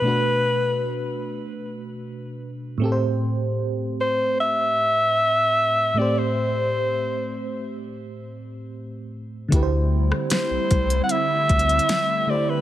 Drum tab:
HH |--------------------------------|--------------------------------|--------------------------------|x-------x---x-x-x---xxxxx-------|
SD |--------------------------------|--------------------------------|--------------------------------|------r-o---------------o-------|
BD |--------------------------------|--------------------------------|--------------------------------|o-----------o-------o-----------|